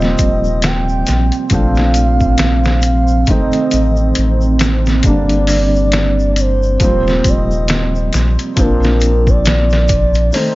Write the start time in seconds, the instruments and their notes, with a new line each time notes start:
Already playing: sub bass D#1, felt piano F3 G3 A#3 C4, analog synth pad C4, soft synth lead D#5
0.01 snare, shaker
0.18 sub bass D#1, kick, closed hi-hat, shaker
0.44 shaker
0.62 soft synth lead G5, snare, closed hi-hat, shaker
0.89 shaker
1.07 sub bass A#1, snare, closed hi-hat, shaker
1.32 closed hi-hat, shaker
1.50 sub bass A#1, felt piano F3 A3 C4, soft synth lead F5, kick, closed hi-hat, shaker
1.54 felt piano D4
1.75 snare, shaker
1.94 closed hi-hat, shaker
2.20 kick, shaker
2.38 snare, closed hi-hat, shaker
2.64 snare, shaker
2.82 soft synth lead F5, closed hi-hat, shaker
3.08 shaker
3.26 felt piano D#3 A3, soft synth lead D#5, kick, closed hi-hat, shaker
3.30 felt piano C4 D#4
3.52 closed hi-hat, shaker
3.71 sub bass A1, closed hi-hat, shaker
3.96 shaker
4.15 sub bass A1, closed hi-hat, shaker
4.41 shaker
4.59 snare, closed hi-hat, shaker
4.86 snare, shaker
5.03 sub bass G1, felt piano D3 G3, soft synth lead D5, kick, closed hi-hat, shaker
5.07 felt piano A#3 D4
5.29 closed hi-hat, shaker
5.47 open hi-hat, shaker
5.76 shaker
5.92 snare, closed hi-hat, shaker
6.20 shaker
6.33 soft synth lead D5, closed hi-hat, shaker
6.40 soft synth lead C5
6.63 shaker
6.79 sub bass D#1, felt piano F3 G3 A#3, kick, closed hi-hat, shaker
6.84 felt piano C4, soft synth lead C5
7.07 snare, shaker
7.24 sub bass D#1, kick, closed hi-hat, shaker
7.29 soft synth lead D#5
7.51 shaker
7.68 snare, closed hi-hat, shaker
7.95 shaker
8.13 sub bass A#1, snare, closed hi-hat, shaker
8.39 closed hi-hat, shaker
8.56 sub bass A#1, felt piano F3 A#3 C4, soft synth lead A#4, kick, closed hi-hat, shaker
8.60 felt piano D4
8.83 snare, shaker
9.01 closed hi-hat, shaker
9.27 soft synth lead D5, kick, shaker
9.45 soft synth lead D5, snare, closed hi-hat, shaker
9.70 snare, shaker
9.88 kick, closed hi-hat, shaker
10.14 closed hi-hat, shaker
10.33 felt piano D#3 A3 C4, soft synth lead C5, open hi-hat, shaker
10.37 felt piano D#4